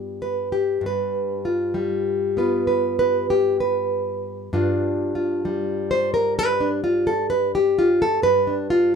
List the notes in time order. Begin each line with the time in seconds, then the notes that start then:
Already playing: G2 G3 B3 F4
0.22 B4
0.52 G4
0.81 G2
0.86 B4
1.45 F4
1.74 G3
2.37 B3 F4 B4
2.67 B4
2.99 B4
3.30 G4
3.60 B4
4.53 G2 D4 F4
5.15 F4
5.45 G3
5.91 C5
6.14 A#4
6.39 B4
6.60 D4
6.84 F4
7.07 A4
7.30 B4
7.55 G4
7.79 F4
8.02 A4
8.22 G2 B4
8.47 D4
8.70 F4